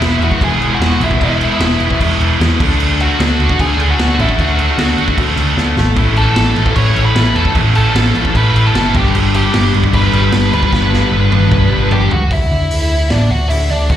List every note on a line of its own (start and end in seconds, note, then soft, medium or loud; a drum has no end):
0.00 0.15 E1 medium
0.00 0.23 E2 medium
0.00 0.20 B2 loud
0.00 0.19 E3 loud
0.00 0.40 E3 loud
0.00 0.40 G#3 loud
0.00 0.41 B3 loud
0.00 0.19 E4 medium
0.00 0.41 E4 loud
0.00 0.41 G#4 loud
0.00 0.24 E5 medium
0.00 snare loud
0.00 crash medium
0.19 0.35 E1 medium
0.19 0.79 E2 medium
0.19 0.80 B2 medium
0.19 0.79 E3 medium
0.19 0.41 F#4 medium
0.19 crash medium
0.24 0.44 F#5 loud
0.31 kick medium
0.41 0.55 E1 loud
0.41 1.20 E3 medium
0.41 1.20 G#3 medium
0.41 1.21 B3 medium
0.41 1.21 E4 medium
0.41 0.70 G#4 medium
0.41 1.21 G#4 medium
0.41 0.74 G#5 loud
0.41 kick loud
0.41 crash medium
0.61 0.75 E1 medium
0.61 crash medium
0.72 1.00 F#4 medium
0.72 1.01 F#5 loud
0.80 0.95 E1 loud
0.80 1.18 E2 medium
0.80 1.20 B2 medium
0.80 1.21 E3 medium
0.80 snare loud
0.80 crash medium
1.01 1.15 B1 medium
1.01 1.21 E4 medium
1.01 crash medium
1.06 1.23 E5 loud
1.11 kick medium
1.19 1.49 E1 loud
1.19 1.79 E2 loud
1.19 1.80 B2 loud
1.19 1.99 E3 medium
1.19 1.79 E3 loud
1.19 2.00 G#3 medium
1.19 2.00 B3 loud
1.19 1.97 E4 medium
1.19 2.00 E4 loud
1.19 kick medium
1.19 crash medium
1.24 2.01 G#4 loud
1.24 1.98 E5 medium
1.41 crash medium
1.60 1.74 E1 loud
1.60 snare loud
1.60 crash medium
1.80 1.95 E1 medium
1.80 2.38 E2 medium
1.80 2.39 B2 medium
1.80 2.39 E3 medium
1.80 crash medium
1.91 kick medium
2.00 2.14 E1 loud
2.00 2.59 E3 medium
2.00 2.59 G#3 medium
2.00 2.60 B3 medium
2.00 2.60 E4 medium
2.00 2.60 G#4 loud
2.00 kick medium
2.00 crash medium
2.20 2.34 E1 loud
2.20 crash medium
2.39 2.58 E2 medium
2.39 2.54 E2 loud
2.39 2.58 B2 medium
2.39 2.60 E3 medium
2.39 snare loud
2.39 crash medium
2.58 2.74 D2 loud
2.58 3.17 D3 loud
2.58 3.42 D3 loud
2.58 3.19 A3 medium
2.58 3.41 A3 loud
2.58 3.40 D4 loud
2.58 kick loud
2.58 crash loud
2.62 3.21 D4 loud
2.62 3.38 F#4 loud
2.80 3.08 D2 medium
2.80 crash medium
3.00 3.57 F#4 medium
3.00 3.62 F#5 loud
3.00 crash medium
3.18 3.34 D2 loud
3.18 3.77 D3 medium
3.18 3.78 A3 medium
3.18 3.76 D4 loud
3.18 snare loud
3.18 crash medium
3.39 3.53 D2 medium
3.39 4.17 D3 medium
3.39 4.20 A3 medium
3.39 4.18 D4 medium
3.39 4.17 F#4 medium
3.39 crash medium
3.49 kick loud
3.59 3.73 D2 loud
3.59 3.88 G#4 medium
3.59 3.90 G#5 loud
3.59 kick loud
3.59 crash medium
3.77 3.93 D2 medium
3.77 4.15 D3 medium
3.77 4.18 A3 medium
3.77 4.16 D4 medium
3.77 crash medium
3.90 4.17 F#4 medium
3.90 4.20 F#5 medium
3.99 4.13 D2 loud
3.99 snare loud
3.99 crash medium
4.16 4.32 A1 loud
4.16 4.76 D3 medium
4.16 4.97 D3 loud
4.16 4.79 A3 loud
4.16 5.00 A3 loud
4.16 4.78 D4 loud
4.16 crash medium
4.21 4.98 D4 loud
4.21 4.38 E4 medium
4.21 4.96 F#4 loud
4.21 4.40 E5 medium
4.29 kick medium
4.39 4.66 D2 loud
4.39 5.15 F#4 medium
4.39 5.15 F#5 medium
4.39 kick medium
4.39 crash medium
4.59 crash medium
4.77 4.92 D2 loud
4.77 5.36 D3 medium
4.77 5.37 A3 medium
4.77 5.35 D4 medium
4.77 snare loud
4.77 crash loud
4.98 5.12 D2 loud
4.98 5.77 D3 medium
4.98 5.97 A3 medium
4.98 5.76 D4 medium
4.98 5.76 F#4 medium
4.98 crash medium
5.08 kick medium
5.18 5.32 D2 medium
5.18 kick loud
5.18 crash medium
5.36 5.51 D2 medium
5.36 5.77 D3 medium
5.36 5.97 A3 medium
5.36 5.75 D4 medium
5.36 crash medium
5.57 5.71 D2 loud
5.57 snare medium
5.77 5.97 G#1 loud
5.77 snare loud
5.95 6.25 A1 loud
5.95 6.58 A2 loud
5.95 6.74 A2 medium
5.95 6.75 E3 loud
5.95 6.57 E3 loud
5.95 6.75 A3 loud
5.95 6.55 A3 loud
5.95 6.76 C#4 loud
5.95 6.76 E4 loud
5.95 kick loud
5.95 crash medium
6.16 6.73 A4 medium
6.16 6.73 A5 loud
6.16 crash medium
6.36 6.51 A1 loud
6.36 snare loud
6.36 crash loud
6.55 6.70 A1 medium
6.55 7.13 A2 medium
6.55 7.15 E3 medium
6.55 7.14 A3 medium
6.55 crash medium
6.66 kick loud
6.75 6.90 A1 loud
6.75 7.53 A2 medium
6.75 7.54 E3 medium
6.75 7.55 A3 medium
6.75 7.55 C#4 medium
6.75 7.55 E4 medium
6.75 7.04 C#5 medium
6.75 7.05 C#6 loud
6.75 kick loud
6.75 crash medium
6.96 7.10 A1 loud
6.96 crash medium
7.05 7.34 B4 medium
7.05 7.36 B5 loud
7.14 7.30 A1 loud
7.14 7.53 A2 medium
7.14 7.54 E3 medium
7.14 7.55 A3 medium
7.14 snare loud
7.14 crash medium
7.36 7.50 E1 medium
7.36 7.54 A4 medium
7.36 7.54 A5 medium
7.36 crash medium
7.45 kick medium
7.54 7.83 A1 loud
7.54 8.13 A2 loud
7.54 8.33 A2 loud
7.54 8.33 E3 loud
7.54 8.14 E3 loud
7.54 8.34 A3 loud
7.54 8.12 A3 loud
7.54 8.34 C#4 loud
7.54 kick medium
7.54 crash medium
7.58 8.35 E4 loud
7.75 8.32 A4 medium
7.75 8.31 A5 loud
7.75 crash medium
7.95 8.09 A1 loud
7.95 snare loud
7.95 crash medium
8.14 8.29 A1 medium
8.14 8.73 A2 medium
8.14 8.74 E3 medium
8.14 8.72 A3 medium
8.14 crash medium
8.25 kick loud
8.34 8.49 A1 loud
8.34 8.93 A2 medium
8.34 8.93 E3 medium
8.34 8.94 A3 medium
8.34 8.94 C#4 medium
8.34 8.94 E4 medium
8.34 8.63 B4 medium
8.34 8.63 B5 medium
8.34 kick medium
8.34 crash medium
8.54 8.68 A1 medium
8.54 crash medium
8.66 8.93 A4 medium
8.66 8.96 A5 loud
8.74 8.88 F#1 loud
8.74 8.93 A2 medium
8.74 8.93 E3 medium
8.74 8.94 A3 loud
8.74 snare loud
8.74 crash medium
8.93 9.08 G1 loud
8.93 9.52 G2 medium
8.93 9.77 G2 loud
8.93 9.73 D3 loud
8.93 9.53 D3 loud
8.93 9.75 G3 loud
8.93 9.56 G3 loud
8.93 9.74 B3 loud
8.93 9.14 G4 medium
8.93 9.14 G5 medium
8.93 kick loud
8.93 crash medium
8.98 9.73 D4 loud
9.14 9.42 G1 loud
9.14 crash medium
9.34 9.71 G4 medium
9.34 9.71 G5 medium
9.34 crash medium
9.52 9.68 G1 medium
9.52 10.11 G2 medium
9.52 10.12 D3 loud
9.52 10.11 G3 loud
9.52 snare loud
9.52 crash loud
9.73 9.88 G1 loud
9.73 10.52 G2 medium
9.73 10.52 D3 medium
9.73 10.52 G3 loud
9.73 10.52 B3 medium
9.73 10.55 D4 medium
9.73 crash medium
9.84 kick loud
9.93 10.07 G1 loud
9.93 10.49 B4 medium
9.93 10.53 B5 medium
9.93 kick loud
9.93 crash medium
10.12 10.27 G1 loud
10.12 10.49 G2 medium
10.12 10.51 D3 medium
10.12 10.51 G3 medium
10.12 crash medium
10.32 10.47 G1 loud
10.32 snare loud
10.32 crash medium
10.50 10.67 D2 loud
10.50 11.09 G2 loud
10.50 11.31 G2 loud
10.50 11.11 D3 medium
10.50 11.31 D3 loud
10.50 11.11 G3 loud
10.50 11.32 G3 medium
10.50 11.88 B4 medium
10.50 11.88 B5 medium
10.50 crash medium
10.55 11.31 B3 loud
10.55 11.30 D4 loud
10.63 kick medium
10.72 11.00 G1 loud
10.72 kick loud
10.72 snare medium
10.93 snare medium
11.10 11.26 G1 loud
11.10 11.69 G2 medium
11.10 11.70 D3 medium
11.10 11.68 G3 medium
11.31 11.46 G1 medium
11.31 12.11 G2 medium
11.31 12.11 D3 medium
11.31 12.11 G3 medium
11.31 12.10 B3 loud
11.31 12.10 D4 loud
11.31 high tom medium
11.52 11.66 G1 loud
11.52 kick loud
11.52 mid tom medium
11.69 11.86 G1 medium
11.69 12.10 G2 medium
11.69 12.10 D3 medium
11.69 12.09 G3 medium
11.91 12.06 G1 loud
11.91 12.10 G4 medium
11.91 12.13 G5 medium
11.91 floor tom loud
12.11 12.26 C#2 medium
12.11 12.30 F#4 medium
12.11 12.33 F#5 loud
12.11 floor tom loud
12.31 12.49 D2 medium
12.31 13.07 E4 medium
12.31 13.14 E5 medium
12.31 kick loud
12.31 open hi-hat medium
12.51 12.69 D3 medium
12.71 13.07 D2 medium
12.71 open hi-hat medium
13.10 13.29 A1 medium
13.10 13.30 D4 medium
13.10 13.31 D5 medium
13.10 snare loud
13.10 open hi-hat medium
13.30 13.48 D2 medium
13.30 13.50 F#4 medium
13.30 13.49 F#5 medium
13.49 13.68 D2 medium
13.49 13.69 E4 medium
13.49 13.68 E5 medium
13.49 open hi-hat medium
13.70 13.88 D2 medium
13.70 13.89 D4 medium
13.70 13.91 D5 medium
13.90 13.97 D2 medium
13.90 13.97 F#4 medium
13.90 13.97 F#5 medium
13.90 kick loud
13.90 open hi-hat medium